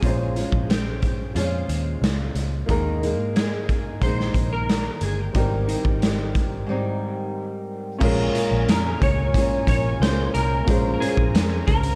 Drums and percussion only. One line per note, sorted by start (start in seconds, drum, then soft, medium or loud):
0.03 kick loud
0.03 closed hi-hat medium
0.36 closed hi-hat medium
0.52 kick medium
0.70 snare loud
0.70 closed hi-hat medium
1.02 kick medium
1.02 closed hi-hat medium
1.36 closed hi-hat medium
1.69 closed hi-hat medium
2.04 snare loud
2.04 closed hi-hat medium
2.35 closed hi-hat medium
2.69 kick loud
2.69 closed hi-hat medium
3.03 closed hi-hat medium
3.36 snare loud
3.36 closed hi-hat medium
3.69 kick medium
3.69 closed hi-hat medium
4.02 kick medium
4.02 closed hi-hat medium
4.20 snare soft
4.34 kick medium
4.34 closed hi-hat medium
4.69 snare loud
4.69 closed hi-hat medium
5.01 closed hi-hat medium
5.35 kick loud
5.35 closed hi-hat medium
5.69 closed hi-hat medium
5.85 kick medium
6.02 snare loud
6.02 closed hi-hat medium
6.35 kick medium
6.35 closed hi-hat medium
8.01 kick loud
8.01 crash loud
8.35 closed hi-hat medium
8.69 snare loud
8.69 closed hi-hat medium
9.02 kick loud
9.02 closed hi-hat medium
9.34 kick medium
9.34 closed hi-hat medium
9.67 kick medium
9.67 closed hi-hat medium
10.03 snare loud
10.03 closed hi-hat medium
10.35 closed hi-hat medium
10.68 kick loud
10.68 closed hi-hat medium
11.02 closed hi-hat medium
11.17 kick loud
11.35 snare loud
11.35 closed hi-hat medium
11.68 kick loud
11.68 closed hi-hat medium
11.83 closed hi-hat medium